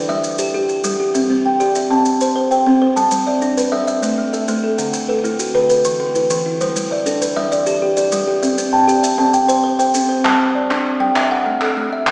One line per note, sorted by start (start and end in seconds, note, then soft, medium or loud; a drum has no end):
0.00 0.24 A4 medium
0.00 0.24 B4 medium
0.08 0.39 G3 medium
0.08 0.54 E5 medium
0.24 maracas medium
0.38 0.68 G4 medium
0.38 maracas medium
0.54 0.85 G4 medium
0.69 1.15 G4 medium
0.69 maracas soft
0.84 1.15 G3 medium
0.84 maracas medium
1.00 1.30 G4 medium
1.15 1.45 C4 medium
1.15 1.45 E5 medium
1.15 maracas medium
1.30 1.60 C4 medium
1.46 1.91 G5 medium
1.60 1.91 G4 medium
1.60 2.06 D5 medium
1.60 maracas medium
1.75 2.06 E5 medium
1.75 maracas medium
1.90 2.21 C4 medium
1.90 2.36 A5 medium
2.05 maracas medium
2.21 2.50 C5 medium
2.21 maracas medium
2.36 2.66 C5 medium
2.51 2.97 C5 medium
2.51 2.97 G5 medium
2.51 maracas soft
2.66 2.97 C4 medium
2.82 3.12 C5 medium
2.96 3.27 G3 medium
2.96 3.27 A5 medium
2.96 maracas soft
3.11 3.42 G3 medium
3.11 maracas medium
3.27 3.73 D5 medium
3.27 3.71 E5 medium
3.42 3.72 D4 medium
3.42 maracas medium
3.57 3.88 B4 medium
3.57 maracas medium
3.72 3.88 G3 medium
3.72 3.86 E5 medium
3.72 4.18 E5 medium
3.87 4.32 E5 medium
3.87 maracas medium
4.02 4.33 A3 medium
4.02 maracas medium
4.18 4.47 A3 medium
4.33 4.79 A4 medium
4.33 4.79 E5 medium
4.33 maracas soft
4.48 4.79 A3 medium
4.48 maracas medium
4.64 4.94 A4 medium
4.78 5.09 D3 medium
4.78 5.09 F#5 medium
4.78 maracas medium
4.93 5.24 D3 medium
4.93 maracas medium
5.09 5.55 A4 medium
5.09 5.53 B4 medium
5.24 5.55 A3 medium
5.24 5.70 E4 medium
5.24 maracas medium
5.39 5.70 F#4 medium
5.39 maracas medium
5.55 5.70 D3 medium
5.55 6.00 B4 medium
5.55 5.68 B4 medium
5.69 6.14 B4 medium
5.69 maracas medium
5.85 6.15 E3 medium
5.85 maracas medium
6.00 6.29 E3 medium
6.15 6.61 E4 medium
6.15 6.61 B4 medium
6.15 maracas medium
6.30 6.61 E3 medium
6.30 maracas medium
6.46 6.76 E4 medium
6.61 6.91 G3 medium
6.61 6.91 C5 medium
6.61 maracas medium
6.76 7.06 G3 medium
6.76 maracas medium
6.91 7.37 D5 medium
6.91 7.35 E5 medium
7.06 7.36 D4 medium
7.06 7.52 A4 medium
7.06 maracas medium
7.22 7.52 B4 medium
7.22 maracas medium
7.36 7.67 G3 medium
7.36 7.82 E5 medium
7.52 7.96 D5 medium
7.52 maracas medium
7.66 7.96 G4 medium
7.66 maracas medium
7.82 8.12 G4 medium
7.97 8.43 G4 medium
7.97 8.43 D5 medium
7.97 maracas medium
8.12 8.43 G3 medium
8.12 maracas medium
8.27 8.58 G4 medium
8.43 8.73 C4 medium
8.43 8.73 E5 medium
8.43 maracas medium
8.58 8.88 C4 medium
8.58 maracas medium
8.73 9.18 G5 medium
8.73 9.17 A5 medium
8.88 9.18 G4 medium
8.88 9.34 D5 medium
8.88 maracas medium
9.03 9.34 E5 medium
9.03 maracas medium
9.18 9.49 C4 medium
9.18 9.64 A5 medium
9.33 9.78 G5 medium
9.33 maracas medium
9.48 9.78 C5 medium
9.48 maracas medium
9.64 9.94 C5 medium
9.79 10.25 C5 medium
9.79 10.25 G5 medium
9.79 maracas soft
9.94 10.25 C4 medium
9.94 maracas medium
10.09 10.40 C5 medium
10.24 10.55 G3 medium
10.24 10.55 A5 medium
10.24 clap medium
10.55 11.01 D5 medium
10.70 11.01 D4 medium
10.70 clap soft
10.86 clap soft
11.00 11.16 G3 medium
11.00 11.31 G5 medium
11.16 11.61 E5 medium
11.16 clap medium
11.31 11.77 F#5 medium
11.46 11.76 A3 medium
11.61 12.07 A4 medium
11.61 clap soft
11.77 12.07 A3 medium
11.93 12.11 E5 medium
12.07 12.11 D3 medium
12.07 clap medium